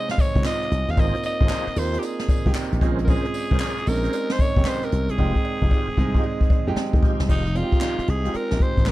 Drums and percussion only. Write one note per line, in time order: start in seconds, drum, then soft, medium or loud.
0.09 snare medium
0.09 closed hi-hat medium
0.18 kick loud
0.18 closed hi-hat medium
0.18 tambourine medium
0.18 cowbell medium
0.36 kick loud
0.36 closed hi-hat medium
0.44 snare loud
0.44 clap medium
0.44 tambourine loud
0.44 cowbell medium
0.62 closed hi-hat medium
0.71 closed hi-hat medium
0.88 closed hi-hat soft
0.97 kick loud
0.97 closed hi-hat medium
0.97 tambourine medium
0.97 cowbell medium
1.15 closed hi-hat medium
1.23 closed hi-hat medium
1.23 tambourine medium
1.23 cowbell medium
1.41 kick loud
1.41 closed hi-hat soft
1.49 snare loud
1.49 clap loud
1.49 tambourine medium
1.49 cowbell medium
1.67 closed hi-hat medium
1.76 open hi-hat medium
1.76 tambourine medium
1.93 closed hi-hat medium
2.02 closed hi-hat medium
2.02 tambourine medium
2.02 cowbell medium
2.19 snare medium
2.19 closed hi-hat medium
2.29 kick loud
2.29 closed hi-hat medium
2.29 tambourine medium
2.29 cowbell medium
2.46 kick loud
2.46 closed hi-hat medium
2.55 snare loud
2.55 clap medium
2.55 tambourine loud
2.55 cowbell medium
2.72 closed hi-hat medium
2.81 kick loud
2.81 closed hi-hat medium
2.99 closed hi-hat medium
3.08 kick loud
3.08 closed hi-hat medium
3.08 tambourine medium
3.08 cowbell medium
3.25 closed hi-hat medium
3.34 closed hi-hat medium
3.34 tambourine medium
3.34 cowbell medium
3.51 kick loud
3.51 closed hi-hat medium
3.60 snare loud
3.60 clap loud
3.60 tambourine medium
3.60 cowbell medium
3.77 closed hi-hat medium
3.86 open hi-hat medium
3.86 tambourine medium
4.04 closed hi-hat medium
4.13 closed hi-hat medium
4.13 tambourine medium
4.13 cowbell medium
4.30 snare medium
4.30 closed hi-hat medium
4.39 kick medium
4.39 closed hi-hat medium
4.39 tambourine medium
4.39 cowbell medium
4.56 kick loud
4.56 closed hi-hat medium
4.65 snare loud
4.65 clap medium
4.65 tambourine medium
4.65 cowbell medium
4.82 closed hi-hat medium
4.92 closed hi-hat medium
5.09 closed hi-hat soft
5.18 kick medium
5.18 cowbell medium
5.35 kick medium
5.45 cowbell medium
5.62 kick medium
5.71 kick medium
5.71 cowbell medium
5.97 kick medium
6.14 kick medium
6.24 cowbell medium
6.41 kick medium
6.50 kick loud
6.50 cowbell medium
6.76 snare loud
6.76 cowbell medium
6.93 kick loud
7.03 kick loud
7.20 snare loud
7.29 kick loud
7.29 crash medium
7.29 cowbell medium
7.46 closed hi-hat medium
7.55 closed hi-hat medium
7.55 cowbell medium
7.72 kick loud
7.72 closed hi-hat soft
7.81 snare loud
7.81 clap loud
7.81 cowbell medium
7.99 closed hi-hat medium
8.07 closed hi-hat medium
8.25 closed hi-hat medium
8.34 closed hi-hat medium
8.34 cowbell medium
8.51 snare medium
8.51 closed hi-hat soft
8.60 kick loud
8.60 closed hi-hat medium
8.77 kick medium
8.77 closed hi-hat medium
8.86 snare loud
8.86 clap medium
8.86 cowbell medium